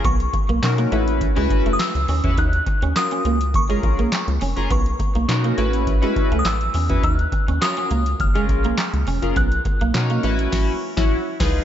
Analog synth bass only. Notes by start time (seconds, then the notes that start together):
0.04 B1
0.49 B1
0.63 B2
0.92 A1
1.37 C#2
1.50 A1
1.66 F#1
1.95 C#2
2.09 D#2
2.24 E2
2.38 D#2
2.82 D#2
3.25 C#2
3.54 F#1
3.83 A#1
4.28 C#2
4.41 F1
4.57 F#1
4.71 B1
5.15 B1
5.29 B2
5.58 A1
6.32 C#2
6.45 A1
6.74 E2
7.03 D#2
7.48 D#2
7.91 C#2
8.20 F#1
8.49 A#1
8.93 C#2
9.07 F1
9.23 F#1
9.36 B1
9.81 B1
9.95 B2
10.24 A1
10.53 A1
10.97 A1
11.40 C#2